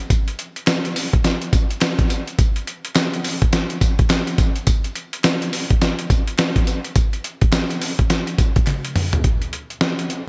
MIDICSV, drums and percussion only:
0, 0, Header, 1, 2, 480
1, 0, Start_track
1, 0, Tempo, 571429
1, 85, Time_signature, 4, 2, 24, 8
1, 8639, End_track
2, 0, Start_track
2, 0, Title_t, "Drums"
2, 86, Note_on_c, 9, 36, 105
2, 86, Note_on_c, 9, 42, 89
2, 86, Note_on_c, 9, 54, 70
2, 170, Note_off_c, 9, 36, 0
2, 170, Note_off_c, 9, 42, 0
2, 170, Note_off_c, 9, 54, 0
2, 233, Note_on_c, 9, 42, 52
2, 317, Note_off_c, 9, 42, 0
2, 326, Note_on_c, 9, 42, 76
2, 410, Note_off_c, 9, 42, 0
2, 472, Note_on_c, 9, 42, 58
2, 556, Note_off_c, 9, 42, 0
2, 564, Note_on_c, 9, 38, 122
2, 566, Note_on_c, 9, 39, 89
2, 566, Note_on_c, 9, 42, 71
2, 568, Note_on_c, 9, 54, 105
2, 648, Note_off_c, 9, 38, 0
2, 650, Note_off_c, 9, 39, 0
2, 650, Note_off_c, 9, 42, 0
2, 652, Note_off_c, 9, 54, 0
2, 713, Note_on_c, 9, 42, 57
2, 797, Note_off_c, 9, 42, 0
2, 806, Note_on_c, 9, 46, 76
2, 806, Note_on_c, 9, 54, 68
2, 890, Note_off_c, 9, 46, 0
2, 890, Note_off_c, 9, 54, 0
2, 953, Note_on_c, 9, 36, 99
2, 953, Note_on_c, 9, 42, 53
2, 1037, Note_off_c, 9, 36, 0
2, 1037, Note_off_c, 9, 42, 0
2, 1044, Note_on_c, 9, 42, 84
2, 1044, Note_on_c, 9, 54, 71
2, 1046, Note_on_c, 9, 38, 74
2, 1128, Note_off_c, 9, 42, 0
2, 1128, Note_off_c, 9, 54, 0
2, 1130, Note_off_c, 9, 38, 0
2, 1189, Note_on_c, 9, 42, 57
2, 1273, Note_off_c, 9, 42, 0
2, 1284, Note_on_c, 9, 36, 101
2, 1284, Note_on_c, 9, 42, 74
2, 1284, Note_on_c, 9, 54, 75
2, 1368, Note_off_c, 9, 36, 0
2, 1368, Note_off_c, 9, 42, 0
2, 1368, Note_off_c, 9, 54, 0
2, 1432, Note_on_c, 9, 42, 60
2, 1516, Note_off_c, 9, 42, 0
2, 1521, Note_on_c, 9, 42, 74
2, 1523, Note_on_c, 9, 54, 81
2, 1525, Note_on_c, 9, 38, 117
2, 1525, Note_on_c, 9, 39, 82
2, 1605, Note_off_c, 9, 42, 0
2, 1607, Note_off_c, 9, 54, 0
2, 1609, Note_off_c, 9, 38, 0
2, 1609, Note_off_c, 9, 39, 0
2, 1669, Note_on_c, 9, 36, 104
2, 1669, Note_on_c, 9, 42, 64
2, 1753, Note_off_c, 9, 36, 0
2, 1753, Note_off_c, 9, 42, 0
2, 1765, Note_on_c, 9, 42, 74
2, 1765, Note_on_c, 9, 54, 69
2, 1849, Note_off_c, 9, 42, 0
2, 1849, Note_off_c, 9, 54, 0
2, 1910, Note_on_c, 9, 42, 58
2, 1994, Note_off_c, 9, 42, 0
2, 2004, Note_on_c, 9, 42, 88
2, 2004, Note_on_c, 9, 54, 73
2, 2005, Note_on_c, 9, 36, 117
2, 2088, Note_off_c, 9, 42, 0
2, 2088, Note_off_c, 9, 54, 0
2, 2089, Note_off_c, 9, 36, 0
2, 2150, Note_on_c, 9, 42, 51
2, 2234, Note_off_c, 9, 42, 0
2, 2246, Note_on_c, 9, 42, 82
2, 2330, Note_off_c, 9, 42, 0
2, 2391, Note_on_c, 9, 42, 58
2, 2475, Note_off_c, 9, 42, 0
2, 2483, Note_on_c, 9, 38, 118
2, 2484, Note_on_c, 9, 39, 102
2, 2485, Note_on_c, 9, 42, 65
2, 2487, Note_on_c, 9, 54, 101
2, 2567, Note_off_c, 9, 38, 0
2, 2568, Note_off_c, 9, 39, 0
2, 2569, Note_off_c, 9, 42, 0
2, 2571, Note_off_c, 9, 54, 0
2, 2633, Note_on_c, 9, 42, 55
2, 2717, Note_off_c, 9, 42, 0
2, 2725, Note_on_c, 9, 46, 82
2, 2725, Note_on_c, 9, 54, 66
2, 2809, Note_off_c, 9, 46, 0
2, 2809, Note_off_c, 9, 54, 0
2, 2871, Note_on_c, 9, 42, 55
2, 2872, Note_on_c, 9, 36, 94
2, 2955, Note_off_c, 9, 42, 0
2, 2956, Note_off_c, 9, 36, 0
2, 2962, Note_on_c, 9, 42, 85
2, 2963, Note_on_c, 9, 54, 74
2, 2964, Note_on_c, 9, 38, 75
2, 3046, Note_off_c, 9, 42, 0
2, 3047, Note_off_c, 9, 54, 0
2, 3048, Note_off_c, 9, 38, 0
2, 3107, Note_on_c, 9, 42, 54
2, 3191, Note_off_c, 9, 42, 0
2, 3203, Note_on_c, 9, 36, 93
2, 3203, Note_on_c, 9, 54, 76
2, 3204, Note_on_c, 9, 42, 77
2, 3287, Note_off_c, 9, 36, 0
2, 3287, Note_off_c, 9, 54, 0
2, 3288, Note_off_c, 9, 42, 0
2, 3351, Note_on_c, 9, 42, 57
2, 3353, Note_on_c, 9, 36, 113
2, 3435, Note_off_c, 9, 42, 0
2, 3437, Note_off_c, 9, 36, 0
2, 3439, Note_on_c, 9, 42, 70
2, 3441, Note_on_c, 9, 54, 82
2, 3443, Note_on_c, 9, 38, 108
2, 3446, Note_on_c, 9, 39, 90
2, 3523, Note_off_c, 9, 42, 0
2, 3525, Note_off_c, 9, 54, 0
2, 3527, Note_off_c, 9, 38, 0
2, 3530, Note_off_c, 9, 39, 0
2, 3588, Note_on_c, 9, 42, 58
2, 3672, Note_off_c, 9, 42, 0
2, 3681, Note_on_c, 9, 42, 69
2, 3682, Note_on_c, 9, 36, 99
2, 3682, Note_on_c, 9, 54, 70
2, 3765, Note_off_c, 9, 42, 0
2, 3766, Note_off_c, 9, 36, 0
2, 3766, Note_off_c, 9, 54, 0
2, 3827, Note_on_c, 9, 42, 59
2, 3911, Note_off_c, 9, 42, 0
2, 3921, Note_on_c, 9, 42, 92
2, 3921, Note_on_c, 9, 54, 66
2, 3923, Note_on_c, 9, 36, 104
2, 4005, Note_off_c, 9, 42, 0
2, 4005, Note_off_c, 9, 54, 0
2, 4007, Note_off_c, 9, 36, 0
2, 4068, Note_on_c, 9, 42, 56
2, 4152, Note_off_c, 9, 42, 0
2, 4162, Note_on_c, 9, 42, 75
2, 4246, Note_off_c, 9, 42, 0
2, 4310, Note_on_c, 9, 42, 60
2, 4394, Note_off_c, 9, 42, 0
2, 4403, Note_on_c, 9, 38, 114
2, 4405, Note_on_c, 9, 39, 96
2, 4405, Note_on_c, 9, 42, 68
2, 4407, Note_on_c, 9, 54, 92
2, 4487, Note_off_c, 9, 38, 0
2, 4489, Note_off_c, 9, 39, 0
2, 4489, Note_off_c, 9, 42, 0
2, 4491, Note_off_c, 9, 54, 0
2, 4552, Note_on_c, 9, 42, 57
2, 4636, Note_off_c, 9, 42, 0
2, 4644, Note_on_c, 9, 46, 78
2, 4644, Note_on_c, 9, 54, 67
2, 4728, Note_off_c, 9, 46, 0
2, 4728, Note_off_c, 9, 54, 0
2, 4792, Note_on_c, 9, 36, 100
2, 4792, Note_on_c, 9, 42, 56
2, 4876, Note_off_c, 9, 36, 0
2, 4876, Note_off_c, 9, 42, 0
2, 4884, Note_on_c, 9, 42, 82
2, 4885, Note_on_c, 9, 54, 72
2, 4887, Note_on_c, 9, 38, 77
2, 4968, Note_off_c, 9, 42, 0
2, 4969, Note_off_c, 9, 54, 0
2, 4971, Note_off_c, 9, 38, 0
2, 5029, Note_on_c, 9, 42, 57
2, 5113, Note_off_c, 9, 42, 0
2, 5124, Note_on_c, 9, 36, 98
2, 5124, Note_on_c, 9, 54, 74
2, 5125, Note_on_c, 9, 42, 79
2, 5208, Note_off_c, 9, 36, 0
2, 5208, Note_off_c, 9, 54, 0
2, 5209, Note_off_c, 9, 42, 0
2, 5271, Note_on_c, 9, 42, 55
2, 5355, Note_off_c, 9, 42, 0
2, 5362, Note_on_c, 9, 42, 76
2, 5363, Note_on_c, 9, 54, 83
2, 5365, Note_on_c, 9, 38, 119
2, 5365, Note_on_c, 9, 39, 85
2, 5446, Note_off_c, 9, 42, 0
2, 5447, Note_off_c, 9, 54, 0
2, 5449, Note_off_c, 9, 38, 0
2, 5449, Note_off_c, 9, 39, 0
2, 5509, Note_on_c, 9, 36, 101
2, 5509, Note_on_c, 9, 42, 61
2, 5593, Note_off_c, 9, 36, 0
2, 5593, Note_off_c, 9, 42, 0
2, 5603, Note_on_c, 9, 42, 71
2, 5604, Note_on_c, 9, 54, 68
2, 5687, Note_off_c, 9, 42, 0
2, 5688, Note_off_c, 9, 54, 0
2, 5750, Note_on_c, 9, 42, 60
2, 5834, Note_off_c, 9, 42, 0
2, 5843, Note_on_c, 9, 42, 93
2, 5843, Note_on_c, 9, 54, 69
2, 5844, Note_on_c, 9, 36, 113
2, 5927, Note_off_c, 9, 42, 0
2, 5927, Note_off_c, 9, 54, 0
2, 5928, Note_off_c, 9, 36, 0
2, 5990, Note_on_c, 9, 42, 56
2, 6074, Note_off_c, 9, 42, 0
2, 6084, Note_on_c, 9, 42, 81
2, 6168, Note_off_c, 9, 42, 0
2, 6228, Note_on_c, 9, 42, 61
2, 6231, Note_on_c, 9, 36, 111
2, 6312, Note_off_c, 9, 42, 0
2, 6315, Note_off_c, 9, 36, 0
2, 6321, Note_on_c, 9, 38, 116
2, 6323, Note_on_c, 9, 42, 70
2, 6324, Note_on_c, 9, 39, 90
2, 6325, Note_on_c, 9, 54, 101
2, 6405, Note_off_c, 9, 38, 0
2, 6407, Note_off_c, 9, 42, 0
2, 6408, Note_off_c, 9, 39, 0
2, 6409, Note_off_c, 9, 54, 0
2, 6472, Note_on_c, 9, 42, 56
2, 6556, Note_off_c, 9, 42, 0
2, 6564, Note_on_c, 9, 54, 67
2, 6565, Note_on_c, 9, 46, 80
2, 6648, Note_off_c, 9, 54, 0
2, 6649, Note_off_c, 9, 46, 0
2, 6710, Note_on_c, 9, 42, 51
2, 6712, Note_on_c, 9, 36, 89
2, 6794, Note_off_c, 9, 42, 0
2, 6796, Note_off_c, 9, 36, 0
2, 6803, Note_on_c, 9, 42, 90
2, 6803, Note_on_c, 9, 54, 76
2, 6805, Note_on_c, 9, 38, 74
2, 6887, Note_off_c, 9, 42, 0
2, 6887, Note_off_c, 9, 54, 0
2, 6889, Note_off_c, 9, 38, 0
2, 6948, Note_on_c, 9, 42, 55
2, 7032, Note_off_c, 9, 42, 0
2, 7042, Note_on_c, 9, 54, 75
2, 7043, Note_on_c, 9, 36, 99
2, 7043, Note_on_c, 9, 42, 76
2, 7126, Note_off_c, 9, 54, 0
2, 7127, Note_off_c, 9, 36, 0
2, 7127, Note_off_c, 9, 42, 0
2, 7190, Note_on_c, 9, 42, 60
2, 7193, Note_on_c, 9, 36, 103
2, 7274, Note_off_c, 9, 42, 0
2, 7277, Note_off_c, 9, 36, 0
2, 7281, Note_on_c, 9, 42, 74
2, 7283, Note_on_c, 9, 39, 80
2, 7283, Note_on_c, 9, 48, 60
2, 7365, Note_off_c, 9, 42, 0
2, 7367, Note_off_c, 9, 39, 0
2, 7367, Note_off_c, 9, 48, 0
2, 7430, Note_on_c, 9, 42, 58
2, 7514, Note_off_c, 9, 42, 0
2, 7523, Note_on_c, 9, 45, 96
2, 7523, Note_on_c, 9, 46, 67
2, 7607, Note_off_c, 9, 45, 0
2, 7607, Note_off_c, 9, 46, 0
2, 7668, Note_on_c, 9, 42, 59
2, 7669, Note_on_c, 9, 43, 92
2, 7752, Note_off_c, 9, 42, 0
2, 7753, Note_off_c, 9, 43, 0
2, 7762, Note_on_c, 9, 42, 85
2, 7764, Note_on_c, 9, 36, 93
2, 7846, Note_off_c, 9, 42, 0
2, 7848, Note_off_c, 9, 36, 0
2, 7910, Note_on_c, 9, 42, 51
2, 7994, Note_off_c, 9, 42, 0
2, 8004, Note_on_c, 9, 42, 68
2, 8088, Note_off_c, 9, 42, 0
2, 8150, Note_on_c, 9, 42, 49
2, 8234, Note_off_c, 9, 42, 0
2, 8240, Note_on_c, 9, 38, 110
2, 8242, Note_on_c, 9, 42, 57
2, 8324, Note_off_c, 9, 38, 0
2, 8326, Note_off_c, 9, 42, 0
2, 8391, Note_on_c, 9, 42, 53
2, 8475, Note_off_c, 9, 42, 0
2, 8483, Note_on_c, 9, 42, 73
2, 8567, Note_off_c, 9, 42, 0
2, 8639, End_track
0, 0, End_of_file